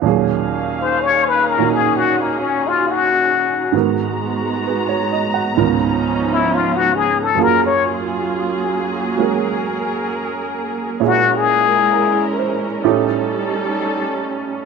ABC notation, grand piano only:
X:1
M:4/4
L:1/16
Q:"Swing" 1/4=66
K:Ebm
V:1 name="Grand piano"
z16 | z4 c d e g z8 | z16 | z4 B2 =c3 z6 z |]
V:2 name="Grand piano"
[E,,B,,G,DAf]6 [B,,E,B,EG]8- [B,,E,B,EG]2 | [A,,E,CGB]8 [D,,A,,E,CFB]8 | [G,,G,B,FA]8 [A,DGB]8 | [B,,B,D_FA]8 [=A,,=A,^C^D=G]8 |]